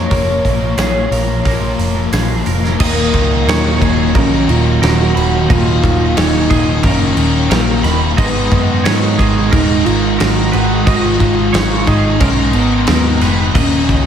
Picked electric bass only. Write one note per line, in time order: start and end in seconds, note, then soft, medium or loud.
0.11 0.39 F1 medium
0.45 0.73 A#1 medium
0.77 1.06 A#1 medium
1.11 1.39 A#1 medium
1.45 1.73 A#1 medium
1.78 2.07 F1 medium
2.13 2.41 A#1 medium
2.46 2.74 F1 medium
2.80 3.11 D#1 medium
3.14 3.44 C#2 medium
3.47 3.78 D#2 medium
3.81 4.12 D#1 medium
4.15 4.45 A#1 loud
4.48 4.79 D#1 medium
4.82 5.13 D#1 loud
5.16 5.46 D#1 medium
5.50 5.80 D#1 medium
5.83 6.14 D#1 medium
6.17 6.47 D#1 loud
6.51 6.81 D#1 medium
6.83 7.14 F#1 loud
7.17 7.48 D#1 loud
7.50 7.81 A#1 loud
7.83 8.14 D#1 medium
8.18 8.48 G#1 loud
8.52 8.82 F#2 medium
8.85 9.16 G#2 medium
9.19 9.49 G#1 medium
9.53 9.83 D#1 medium
9.87 10.17 G#1 medium
10.20 10.50 G#1 loud
10.54 10.84 G#1 medium
10.87 11.17 G#1 medium
11.20 11.51 G#1 loud
11.53 11.84 G#1 medium
11.88 12.18 G#1 medium
12.20 12.51 B1 loud
12.54 12.85 G#1 medium
12.88 13.19 D#2 medium
13.21 13.52 F1 medium
13.55 13.86 D#1 medium
13.89 14.06 C#2 medium